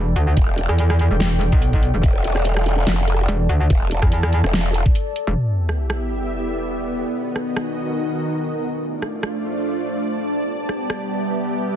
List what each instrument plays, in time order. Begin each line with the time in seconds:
Already playing: wobble bass E1, ambient pad A4 D5 G5
0.16 wobble bass D2, closed hi-hat
0.37 wobble bass E1, kick, closed hi-hat
0.58 closed hi-hat
0.69 wobble bass E2, cross-stick
0.78 closed hi-hat
0.90 cross-stick
0.99 closed hi-hat
1.11 wobble bass E1
1.20 snare, closed hi-hat
1.41 closed hi-hat
1.52 wobble bass B1, kick
1.62 closed hi-hat
1.73 kick
1.83 closed hi-hat
1.94 wobble bass E1
2.03 wobble bass E1, kick, closed hi-hat
2.24 closed hi-hat
2.36 cross-stick
2.45 closed hi-hat
2.57 cross-stick
2.66 closed hi-hat
2.87 wobble bass F1, ambient pad A5, snare, closed hi-hat
3.08 closed hi-hat
3.28 wobble bass E1, closed hi-hat
3.49 wobble bass D2, closed hi-hat
3.70 wobble bass E1, kick, closed hi-hat
3.91 closed hi-hat
4.02 wobble bass E2, kick, cross-stick
4.12 closed hi-hat
4.23 cross-stick
4.33 closed hi-hat
4.44 wobble bass E1, cross-stick
4.53 snare, closed hi-hat
4.74 closed hi-hat
4.86 kick
4.95 closed hi-hat
5.16 closed hi-hat
5.27 wobble bass E1
5.37 supersaw synth B3 G4 E5, ambient pad E4, sub drop
5.69 ambient pad A4 D5, cross-stick
5.90 cross-stick
6.05 ambient pad G5
7.04 supersaw synth D#3 F#4 D#5, ambient pad D#4
7.29 ambient pad G#5
7.34 ambient pad A#4, cross-stick
7.43 ambient pad D#5
7.57 cross-stick
8.70 supersaw synth A3 F4 D5, ambient pad D4
9.02 ambient pad C5, cross-stick
9.23 cross-stick
9.33 ambient pad F5
9.46 ambient pad A5
10.37 ambient pad G3, supersaw synth B3 G4
10.49 ambient pad B4
10.69 cross-stick
10.78 ambient pad E5
10.90 cross-stick